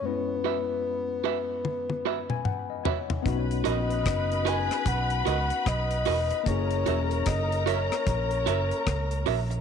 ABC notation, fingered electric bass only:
X:1
M:4/4
L:1/16
Q:"Swing 16ths" 1/4=75
K:B
V:1 name="Fingered electric bass" clef=bass
z16 | B,,,2 A,,,2 F,,,3 z B,,,2 C,, z B,,,2 E,,, z | F,,,2 E,,,2 F,,,3 z A,,,2 F,,, z C,,2 A,,,2 |]